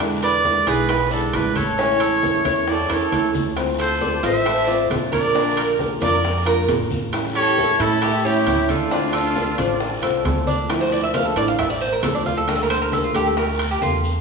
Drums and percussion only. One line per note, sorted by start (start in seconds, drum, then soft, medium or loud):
0.00 high bongo medium
0.00 high conga soft
0.00 high timbale loud
0.00 long guiro medium
0.00 maracas medium
0.23 high conga soft
0.23 high timbale medium
0.23 maracas soft
0.44 high bongo medium
0.44 high conga medium
0.44 short guiro medium
0.44 maracas soft
0.67 high bongo soft
0.67 high conga soft
0.67 high timbale medium
0.67 short guiro medium
0.67 maracas medium
0.89 high bongo medium
0.89 high timbale medium
0.89 long guiro medium
0.89 maracas medium
1.12 high bongo soft
1.12 high conga soft
1.12 maracas soft
1.33 high bongo soft
1.33 low bongo medium
1.33 high conga medium
1.33 high timbale loud
1.33 short guiro medium
1.33 maracas soft
1.56 high bongo soft
1.56 high conga medium
1.56 high timbale medium
1.56 short guiro medium
1.56 maracas medium
1.78 high bongo medium
1.78 high conga soft
1.78 long guiro medium
1.78 maracas medium
2.00 high conga soft
2.00 high timbale medium
2.00 maracas soft
2.23 high bongo medium
2.23 high conga loud
2.23 short guiro medium
2.23 maracas soft
2.45 high bongo soft
2.45 high conga medium
2.45 high timbale medium
2.45 short guiro medium
2.45 maracas medium
2.68 high bongo medium
2.68 high conga soft
2.68 long guiro medium
2.68 maracas medium
2.90 high bongo medium
2.90 high conga soft
2.90 high timbale medium
2.90 maracas soft
3.12 high bongo medium
3.12 high conga medium
3.12 high timbale medium
3.12 short guiro medium
3.12 maracas soft
3.34 low bongo medium
3.34 high conga loud
3.34 short guiro medium
3.34 maracas medium
3.56 high bongo medium
3.56 high conga soft
3.56 high timbale medium
3.56 long guiro medium
3.56 maracas medium
3.79 high conga soft
3.79 high timbale medium
3.79 maracas soft
4.01 high bongo medium
4.01 high conga medium
4.01 short guiro medium
4.01 maracas soft
4.23 high bongo soft
4.23 high timbale medium
4.23 short guiro medium
4.23 maracas medium
4.46 high bongo medium
4.46 high conga soft
4.46 high timbale medium
4.46 long guiro medium
4.46 maracas medium
4.68 high bongo soft
4.68 high conga soft
4.68 maracas soft
4.90 high bongo soft
4.90 low bongo medium
4.90 high conga medium
4.90 high timbale medium
4.90 low timbale medium
4.90 short guiro medium
4.90 maracas soft
5.12 high bongo soft
5.12 high conga medium
5.12 high timbale medium
5.12 short guiro medium
5.12 maracas medium
5.35 high bongo medium
5.35 high conga soft
5.35 long guiro medium
5.35 maracas medium
5.57 high conga soft
5.57 high timbale loud
5.57 maracas soft
5.79 high bongo medium
5.79 high conga medium
5.79 short guiro medium
5.79 maracas soft
6.02 high bongo soft
6.02 high conga loud
6.02 high timbale medium
6.02 short guiro medium
6.02 maracas medium
6.24 high bongo medium
6.24 high conga soft
6.24 long guiro medium
6.24 maracas medium
6.46 high bongo soft
6.46 high conga soft
6.46 high timbale loud
6.46 maracas soft
6.68 high bongo soft
6.68 low bongo medium
6.68 high conga medium
6.68 high timbale medium
6.68 low timbale medium
6.68 short guiro medium
6.68 maracas soft
6.91 high bongo soft
6.91 high conga medium
6.91 short guiro medium
6.91 maracas medium
7.12 high bongo medium
7.12 high conga soft
7.12 high timbale medium
7.12 long guiro medium
7.12 maracas medium
7.35 high conga soft
7.35 high timbale medium
7.35 maracas soft
7.57 high bongo medium
7.57 high conga medium
7.57 short guiro medium
7.57 maracas soft
7.79 high bongo soft
7.79 high timbale medium
7.79 short guiro medium
7.79 maracas medium
8.02 high bongo medium
8.02 high conga soft
8.02 high timbale medium
8.02 long guiro medium
8.02 maracas medium
8.24 high bongo soft
8.24 high conga soft
8.24 maracas soft
8.46 high bongo soft
8.46 low bongo medium
8.46 high conga medium
8.46 high timbale medium
8.46 short guiro medium
8.46 maracas soft
8.68 high bongo soft
8.68 high conga medium
8.68 high timbale medium
8.68 short guiro medium
8.68 maracas medium
8.91 high bongo medium
8.91 high conga soft
8.91 long guiro medium
8.91 maracas medium
9.13 high conga soft
9.13 high timbale loud
9.13 maracas soft
9.35 high bongo medium
9.35 high conga medium
9.35 short guiro medium
9.35 maracas soft
9.58 high bongo soft
9.58 high conga medium
9.58 high timbale medium
9.58 short guiro medium
9.58 maracas medium
9.80 high bongo medium
9.80 high conga soft
9.80 long guiro medium
9.80 maracas medium
10.02 high bongo soft
10.02 high conga soft
10.02 high timbale medium
10.02 maracas soft
10.24 high bongo soft
10.24 low bongo medium
10.24 high conga medium
10.24 high timbale medium
10.24 low timbale medium
10.24 short guiro medium
10.24 maracas soft
10.47 high bongo soft
10.47 high conga medium
10.47 short guiro medium
10.47 maracas medium
10.69 high bongo medium
10.69 high conga soft
10.69 high timbale medium
10.69 long guiro medium
10.69 maracas medium
10.92 high conga soft
10.92 maracas soft
11.14 high bongo medium
11.14 high conga loud
11.14 high timbale medium
11.14 short guiro medium
11.14 maracas medium
11.36 high bongo soft
11.36 high conga soft
11.36 high timbale medium
11.36 short guiro medium
11.36 maracas soft
11.58 high bongo medium
11.58 high conga soft
11.58 low conga medium
11.58 high timbale medium
11.58 long guiro medium
11.58 maracas medium
11.81 high bongo soft
11.81 high conga soft
11.81 maracas soft
12.03 high bongo soft
12.03 low bongo medium
12.03 high conga medium
12.03 high timbale loud
12.03 low timbale medium
12.03 short guiro medium
12.03 maracas medium
12.25 high bongo soft
12.25 high conga medium
12.25 short guiro medium
12.25 maracas soft
12.48 high bongo medium
12.48 high conga soft
12.48 high timbale medium
12.48 long guiro medium
12.48 maracas medium
12.70 high conga soft
12.70 high timbale loud
12.70 maracas soft
12.92 high bongo medium
12.92 high conga medium
12.92 short guiro medium
12.92 maracas medium
13.14 high bongo soft
13.14 high conga soft
13.14 high timbale medium
13.14 short guiro medium
13.14 maracas soft
13.37 high bongo medium
13.37 high conga soft
13.37 long guiro medium
13.37 maracas medium
13.59 high bongo soft
13.59 high conga soft
13.59 high timbale medium
13.59 maracas soft
13.81 high bongo soft
13.81 low bongo medium
13.81 high conga medium
13.81 short guiro medium
13.81 maracas medium
14.04 high bongo soft
14.04 short guiro medium
14.04 maracas soft